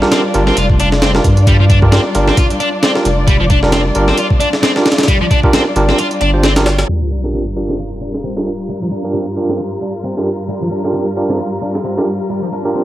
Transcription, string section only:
0.00 6.85 G3 medium
0.00 6.85 D4 medium
0.00 6.85 F4 medium
0.00 6.87 D5 medium
6.90 12.84 G2 medium
6.90 12.84 G3 medium
6.90 12.84 F4 medium
6.90 12.84 A#4 medium

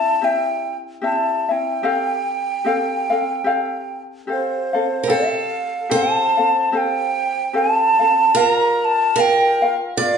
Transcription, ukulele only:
0.00 0.21 C4 soft
0.00 0.22 E4 soft
0.00 0.21 E5 soft
0.22 1.02 C4 medium
0.22 1.02 E4 medium
0.22 1.01 G4 medium
0.22 1.02 E5 medium
1.02 1.49 C4 medium
1.02 1.49 E4 soft
1.02 1.49 G4 medium
1.02 1.47 E5 medium
1.49 1.82 C4 soft
1.49 1.84 E4 soft
1.49 1.84 E5 soft
1.83 2.65 C4 medium
1.83 2.64 G4 medium
1.83 2.66 A4 medium
1.83 2.66 F5 medium
2.65 3.11 C4 medium
2.65 3.11 G4 medium
2.65 3.10 A4 medium
2.65 3.09 F5 medium
3.10 3.44 C4 soft
3.10 3.45 A4 soft
3.10 3.45 F5 medium
3.44 4.27 C4 medium
3.44 4.27 G4 medium
3.44 4.29 A4 medium
3.44 4.28 F5 medium
4.27 4.74 C4 medium
4.27 4.74 G4 medium
4.27 4.73 A4 medium
4.27 4.72 F5 medium
4.73 5.07 C4 soft
4.73 5.07 A4 medium
4.73 5.08 F5 medium
5.07 5.89 C4 medium
5.07 5.88 G4 medium
5.07 5.90 A4 medium
5.07 5.91 F5 medium
5.89 6.37 C4 medium
5.89 6.37 G4 medium
5.89 6.37 A4 medium
5.89 6.36 F5 medium
6.37 6.72 C4 soft
6.37 6.72 A4 soft
6.37 6.72 F5 soft
6.72 7.53 C4 medium
6.72 7.52 G4 medium
6.72 7.53 A4 medium
6.72 7.55 F5 medium
7.53 8.00 C4 medium
7.53 8.00 G4 medium
7.53 7.99 A4 medium
7.53 7.98 F5 medium
7.99 8.35 C4 soft
7.99 8.35 A4 soft
7.99 8.35 F5 soft
8.35 9.16 F4 medium
8.35 9.17 A#4 medium
8.35 9.15 D5 medium
8.35 9.17 F5 medium
9.16 9.63 F4 medium
9.16 9.62 A#4 medium
9.16 9.63 D5 medium
9.16 9.61 F5 medium
9.62 9.98 F4 soft
9.62 9.98 A#4 soft
9.62 9.97 F5 medium
9.98 10.18 F4 medium
9.98 10.18 A#4 medium
9.98 10.18 D5 soft

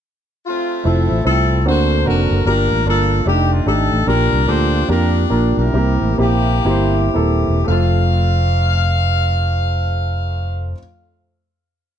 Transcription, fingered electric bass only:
0.85 1.07 F1 medium
1.10 1.23 A1 medium
1.25 1.66 C2 medium
1.66 2.07 D2 medium
2.05 2.27 F1 medium
2.31 2.43 F#1 medium
2.45 2.67 G1 medium
2.71 2.84 A1 medium
2.86 3.20 G1 medium
3.26 3.60 F1 medium
3.66 3.88 G#1 medium
3.92 4.05 A1 medium
4.07 4.29 A#1 medium
4.33 4.45 C2 medium
4.48 4.83 D2 medium
4.89 5.24 F2 medium
5.30 5.54 A#1 medium
5.57 5.71 B1 medium
5.74 5.98 C2 medium
6.02 6.16 A1 medium
6.19 6.59 A#1 medium
6.65 7.08 G1 medium
7.16 7.44 D#1 medium
7.48 7.65 E1 medium
7.68 10.73 F1 medium

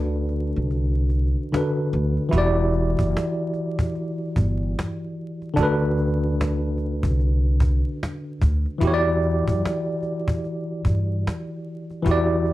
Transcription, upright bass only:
0.00 0.52 D2 loud
0.56 1.33 C2 medium
1.93 2.16 D2 medium
2.33 2.95 E1 loud
2.99 3.13 F#1 medium
4.36 4.73 G1 medium
5.57 7.00 D2 medium
7.04 7.81 C2 medium
8.42 8.65 D2 medium
8.82 9.43 E2 loud
9.48 9.62 F#2 medium
10.85 11.22 G2 medium
12.06 12.53 E2 loud

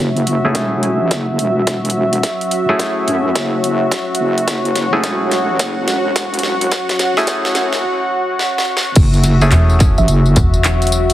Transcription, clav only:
0.45 2.65 A3 medium
0.45 2.65 C#4 medium
0.45 2.65 E4 medium
0.45 2.65 G#4 loud
2.69 4.89 A3 medium
2.69 4.89 C#4 medium
2.69 4.89 E4 medium
2.69 4.89 G#4 loud
4.93 7.13 A3 medium
4.93 7.13 C#4 medium
4.93 7.13 E4 medium
4.93 7.13 G#4 loud
7.17 7.84 A3 loud
7.17 7.84 C#4 medium
7.17 7.84 E4 medium
7.17 7.84 G#4 loud
9.42 11.13 A3 medium
9.42 11.13 C#4 medium
9.42 11.13 E4 medium
9.42 11.13 G#4 loud

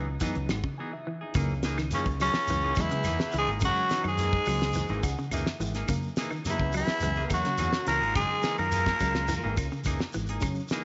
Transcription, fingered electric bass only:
0.00 0.16 C#2 medium
0.36 0.47 C#2 medium
0.51 0.62 G#1 medium
1.35 1.91 C#2 loud
2.06 2.29 C#2 medium
2.36 muted fingered electric bass stroke soft
2.50 2.72 C#2 medium
2.77 2.88 E2 medium
2.94 muted fingered electric bass stroke soft
3.07 3.18 E2 medium
3.34 3.45 C#2 medium
3.48 3.70 G#1 medium
4.04 4.38 F#2 medium
4.47 4.81 C#2 medium
4.89 5.01 G#1 medium
5.03 5.15 C#2 medium
5.31 5.43 C#2 medium
5.60 5.82 G#1 medium
6.60 6.82 C#2 medium
7.03 7.25 C#2 medium
7.30 7.41 E2 medium
7.45 muted fingered electric bass stroke soft
7.60 7.71 E2 medium
7.87 7.99 C#2 loud
8.02 8.24 G#1 medium
8.59 8.92 F#2 medium
9.01 9.34 C#2 medium
9.45 9.55 G#1 loud
9.57 9.68 C#2 medium
9.86 9.97 C#2 medium
10.16 10.38 G#1 medium

